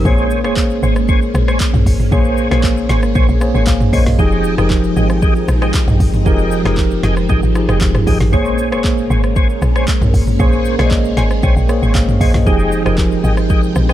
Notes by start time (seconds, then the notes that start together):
0.05 A#1 G#3 A#3 C#4 G#4 C5 C#5 G#5, kick, shaker
0.18 shaker
0.31 shaker
0.44 F1 A#3 G#4 C5 C#5 G#5, cross-stick, shaker
0.57 kick, clap, shaker
0.70 shaker
0.83 G#1 C5 C#5 G#5, shaker
0.96 cross-stick, shaker
1.08 C5 C#5 G#5, kick, shaker
1.22 shaker
1.34 A#1, cross-stick, shaker
1.48 C5 C#5 G#5, cross-stick, shaker
1.60 kick, clap, shaker
1.74 A#1, mid tom, shaker
1.86 G#1, kick, open hi-hat, shaker
2.00 mid tom, shaker
2.12 A#1 A#3 G#4 C5 C#5 G#5, kick, shaker
2.25 shaker
2.37 shaker
2.51 A#1 A#3 G#4 C5 C#5 G#5, cross-stick, snare, shaker
2.64 kick, clap, shaker
2.77 shaker
2.89 G#1 C5 C#5 G#5, snare, shaker
3.03 cross-stick, shaker
3.15 A#1 C5 C#5 G#5, kick, shaker
3.29 A#1, shaker
3.41 A#3 G#4 C5 C#5 G#5, cross-stick, shaker
3.55 G#1 C5 C#5 G#5, shaker
3.67 G#1 F5, kick, clap, shaker
3.81 mid tom, shaker
3.92 A#1 A#3 G#4 C5 C#5 D#5 G#5, kick, open hi-hat, shaker
4.06 A#1, snare, mid tom, shaker
4.18 F1 F3 G#3 C4 D#4 G4 G#4 D#5 G5, kick, shaker
4.31 shaker
4.44 shaker
4.58 F1 F3 D#4 G4 G#4 A#4 D#5 G5, cross-stick, shaker
4.70 kick, clap, shaker
4.84 shaker
4.96 G#1 G#4 D#5 G5, shaker
5.10 cross-stick, shaker
5.22 G#4 D#5 G5, kick, shaker
5.36 shaker
5.48 A#1, cross-stick, shaker
5.61 G#4 D#5 G5, cross-stick, shaker
5.74 kick, clap, shaker
5.88 A#1, mid tom, shaker
6.00 G#1, kick, open hi-hat, shaker
6.14 mid tom, shaker
6.25 F1 F3 D#4 G4 G#4 A#4 D#5 G5, kick, shaker
6.39 shaker
6.51 shaker
6.65 F1 F3 D#4 G4 G#4 A#4 D#5 G5, cross-stick, snare, shaker
6.77 kick, clap, shaker
6.91 shaker
7.03 F1 G#4 D#5 G5, snare, shaker
7.17 cross-stick, shaker
7.29 G#1 G#4 D#5 G5, kick, shaker
7.43 G#1, shaker
7.55 F3 D#4 G4 G#4, cross-stick, shaker
7.68 F1 G#4 D#5 G5, cross-stick, shaker
7.81 F1, kick, clap, shaker
7.94 cross-stick, mid tom, shaker
8.06 G#1 F3 D#4 G4 G#4 D#5 G5, kick, open hi-hat, shaker
8.20 G#1, snare, mid tom, shaker
8.32 A#1 G#3 A#3 C#4 G#4 C5 C#5 G#5, kick, shaker
8.45 shaker
8.58 shaker
8.71 F1 A#3 G#4 C5 C#5 G#5, cross-stick, shaker
8.84 kick, clap, shaker
8.98 shaker
9.10 G#1 C5 C#5 G#5, shaker
9.24 cross-stick, shaker
9.36 C5 C#5 G#5, kick, shaker
9.50 shaker
9.62 A#1, cross-stick, shaker
9.75 C5 C#5 G#5, cross-stick, shaker
9.88 kick, clap, shaker
10.01 A#1, mid tom, shaker
10.14 G#1, kick, open hi-hat, shaker
10.27 mid tom, shaker
10.39 A#1 A#3 G#4 C5 C#5 G#5, kick, shaker
10.52 shaker
10.65 shaker
10.78 A#1 A#3 G#4 C5 C#5 D5 G#5, cross-stick, snare, shaker
10.86 D#5
10.91 kick, clap, shaker
11.05 shaker
11.17 G#1 C5 C#5 G#5, snare, shaker
11.30 cross-stick, shaker
11.43 A#1 C5 C#5 G5 G#5, kick, shaker
11.56 A#1, shaker
11.68 A#3 G#4 C5 C#5, cross-stick, shaker
11.82 G#1 C5 C#5 G#5, shaker
11.95 G#1 F5, kick, clap, shaker
12.09 mid tom, shaker
12.20 A#1 A#3 G#4 C5 C#5 D#5 G#5, kick, open hi-hat, shaker
12.34 A#1, snare, mid tom, shaker
12.46 F1 F3 G#3 C4 D#4 G4 G#4 D#5 G5, kick, shaker
12.59 shaker
12.72 shaker
12.85 F1 F3 D#4 G4 G#4 A#4 D#5 G5, cross-stick, shaker
12.98 kick, clap, shaker
13.12 shaker
13.24 G#1 G#4 D#5 G5, shaker
13.37 cross-stick, shaker
13.50 G#4 D#5 G5, kick, shaker
13.63 shaker
13.75 A#1, cross-stick, shaker
13.89 G#4 D#5 G5, cross-stick, shaker